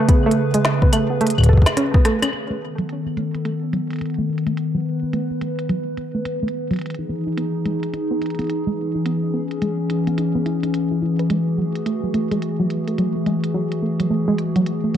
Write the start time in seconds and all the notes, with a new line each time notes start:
Already playing: C#3 A3 G#4 B4
0.09 B3, kick, closed hi-hat
0.26 A3
0.31 closed hi-hat
0.54 G#3, closed hi-hat
0.65 snare
0.82 B3, kick
0.93 A3, closed hi-hat, claves
1.10 B3
1.21 A3, closed hi-hat
1.27 closed hi-hat
1.30 closed hi-hat
1.38 kick, claves
1.41 kick
1.43 kick, closed hi-hat
1.46 kick
1.49 A4, kick
1.53 kick
1.57 kick
1.62 kick
1.66 snare, closed hi-hat, claves
1.77 C#4, cross-stick, closed hi-hat
1.94 B3, kick, cross-stick
2.05 A3, cross-stick, closed hi-hat
2.22 C#4, cross-stick, closed hi-hat, claves
2.33 D#3 B3 A4, closed hi-hat
2.50 A3
2.78 F#3, closed hi-hat
2.89 closed hi-hat
3.06 B3
3.17 A3, closed hi-hat
3.34 B3, closed hi-hat
3.45 A3, closed hi-hat
3.73 F#3, closed hi-hat
3.91 closed hi-hat
3.93 closed hi-hat
3.96 closed hi-hat
3.99 B3, closed hi-hat
4.01 closed hi-hat
4.06 closed hi-hat
4.10 closed hi-hat
4.14 closed hi-hat
4.18 A3
4.29 B3
4.38 closed hi-hat
4.46 A3, closed hi-hat
4.57 B4, closed hi-hat
4.75 F#3
5.03 B3
5.13 A3, closed hi-hat
5.31 B3
5.41 A3, closed hi-hat
5.59 closed hi-hat
5.69 F#3, closed hi-hat
5.97 B3, closed hi-hat
6.15 A3
6.25 closed hi-hat
6.43 A3
6.48 closed hi-hat
6.71 F#3, closed hi-hat
6.73 closed hi-hat
6.76 closed hi-hat
6.79 E3 D#4 G#4, closed hi-hat
6.81 closed hi-hat
6.86 closed hi-hat
6.90 closed hi-hat
6.95 closed hi-hat
6.99 D#4
7.09 B3
7.27 D#4
7.37 B3, closed hi-hat
7.65 G#3, closed hi-hat
7.83 closed hi-hat
7.94 D#4, closed hi-hat
8.11 B3
8.22 D#4, closed hi-hat
8.26 closed hi-hat
8.30 closed hi-hat
8.35 closed hi-hat
8.39 B3, closed hi-hat
8.42 closed hi-hat
8.44 closed hi-hat
8.47 closed hi-hat
8.50 closed hi-hat
8.67 G#3
8.95 D#4
9.05 B3 C#4, closed hi-hat
9.23 D#4
9.34 B3
9.51 closed hi-hat
9.62 G#3, closed hi-hat
9.90 D#4, closed hi-hat
10.07 B3, closed hi-hat
10.18 D#4, closed hi-hat
10.35 B3
10.46 E4, closed hi-hat
10.63 D#4, closed hi-hat
10.74 closed hi-hat
10.91 E4
11.02 E4
11.19 B4, closed hi-hat
11.30 G#3 A3 F#4 G#4, closed hi-hat
11.58 F#3
11.75 closed hi-hat
11.86 A3, closed hi-hat
12.04 F#3
12.14 A3, closed hi-hat
12.31 G#3, closed hi-hat
12.42 closed hi-hat
12.60 F#3
12.70 closed hi-hat
12.88 A3, closed hi-hat
12.98 F#3, closed hi-hat
13.16 A3
13.26 G#3, closed hi-hat
13.44 closed hi-hat
13.54 F#3
13.72 closed hi-hat
13.82 A3
14.00 F#3, closed hi-hat
14.10 A3
14.28 G#3
14.38 closed hi-hat
14.56 F#3, closed hi-hat
14.66 closed hi-hat
14.84 A3